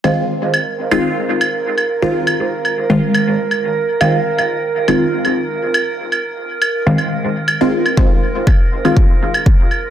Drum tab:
CL |x---x--x---x--x-|--x--x---x--x---|x--x---x--x---x-|-x---x--x---x--x|
BD |----------------|----------------|----------------|----------------|

CL |x---x--x---x--x-|
BD |o---o---o---o---|